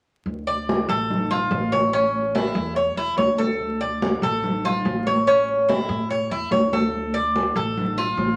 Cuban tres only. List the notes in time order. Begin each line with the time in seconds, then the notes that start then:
0.47 D5
0.89 A4
1.31 F4
1.72 C#5
1.93 C#4
2.35 E4
2.76 C#5
2.97 E4
3.18 C#5
3.38 A4
3.81 D5
4.23 A4
4.65 F4
5.07 C#5
5.27 C#4
5.69 E4
6.10 C#5
6.31 E4
6.52 C#5
6.73 A4
7.14 D5
7.56 A4
7.98 F4